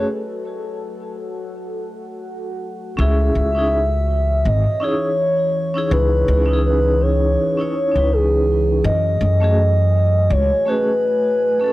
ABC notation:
X:1
M:4/4
L:1/16
Q:"Swing 16ths" 1/4=82
K:C#m
V:1 name="Soft synth lead"
z16 | e8 d2 c6 | B4 B2 c6 G4 | d8 c2 B6 |]
V:2 name="Ambient pad"
[FAf]16 | [E,c]16- | [E,c]16 | [A,Fg]16 |]
V:3 name="Vibraphone"
z16 | [CEG]3 [CDEG] z6 [CDEG] z4 [CDEG]- | [CDEG]3 [CDEG]6 [CDEc]2 [CDEB]4- [CDEB] | z3 [A,CFG] z6 [A,CFG] z4 [A,CFA] |]
V:4 name="Upright bass" clef=bass
z16 | C,,2 C,,6 G,,, z6 z | C,,2 C,,6 z3 C,,4- C,, | F,,2 F,,6 C,, z6 z |]